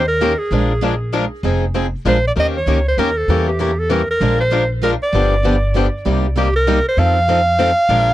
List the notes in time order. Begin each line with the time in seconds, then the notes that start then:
Already playing: D#2
0.07 A#4
0.20 D#3 A#3 C#4 G4 A#4
0.38 G#4
0.51 A#1 F3 G#3 D4 F4 A#4
0.81 F3 G#3 D4 F4 A#4
1.12 F3 G#3 D4 F4 A#4
1.43 F1 F3 C4 D#4 G#4
1.74 F3 C4 D#4 G#4
2.05 A#1 F3 G#3 D4 F4 A#4 C5
2.27 D5
2.36 D#2 D#3 A#3 C#4 G4 A#4 D#5
2.57 C#5
2.66 C#2 D#3 A#3 C#4 G4 A#4
2.88 C5
2.97 D#2 D#3 A#3 C#4 G4 A#4
3.17 A4
3.28 E2 E3 G3 A#3 C#4 E4 G4 A#4
3.48 G4
3.59 E3 G3 A#3 C#4 E4 G4 A#4
3.79 A4
3.90 E3 G3 A#3 C#4 E4 G4 A#4
4.11 A#4
4.20 A#1 F3 G#3 D4 F4 A#4
4.40 C5
4.50 F3 G#3 D4 F4 A#4
4.82 F3 G#3 D4 F4 A#4
5.02 D5
5.12 G1 D3 F3 B3 D4 G4
5.43 D3 F3 B3 D4 G4
5.74 D3 F3 B3 D4 G4
6.05 C2 C3 G3 A#3 D#4 G4
6.35 C3 G3 A#3 D#4 G4
6.56 A#4
6.67 C3 G3 A#3 D#4 G4
6.88 C5
6.97 F2 F3 C4 D#4 A4 F5
7.28 F3 C4 D#4 A4
7.59 F3 C4 D#4 A4
7.89 A#1 F3 G#3 D4 F4 A#4